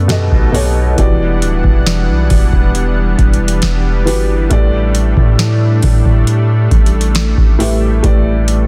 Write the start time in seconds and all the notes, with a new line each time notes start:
Already playing: F#2 A3
0.08 B2 B3 D#4 G4 A4 D#5, snare, closed hi-hat
0.32 B1, kick
0.52 B2 B3 G4 A4 C#5, open hi-hat
0.96 E1 E3 G3 B3 D4 F#4 G4 D5 F#5, kick, closed hi-hat
1.42 D1, closed hi-hat
1.64 E1, kick
1.87 snare, closed hi-hat
2.09 B1
2.30 E1, kick, open hi-hat
2.53 kick
2.75 closed hi-hat
3.19 E1, kick, closed hi-hat
3.34 closed hi-hat
3.48 closed hi-hat
3.62 E1, snare, closed hi-hat
4.05 G1 E3 B3 F#4 G4 B4, open hi-hat
4.50 A1 A2 A3 G4 B4 D5, kick, closed hi-hat
4.95 closed hi-hat
5.17 A2, kick
5.39 snare, closed hi-hat
5.83 A2, kick, open hi-hat
6.05 kick
6.27 closed hi-hat
6.71 A1, kick, closed hi-hat
6.86 closed hi-hat
7.01 closed hi-hat
7.15 snare, closed hi-hat
7.38 A1, kick
7.58 A2 A3 G4 B4 E5, open hi-hat
8.02 A1 A2 A3 G4 B4 D5, kick, closed hi-hat
8.48 closed hi-hat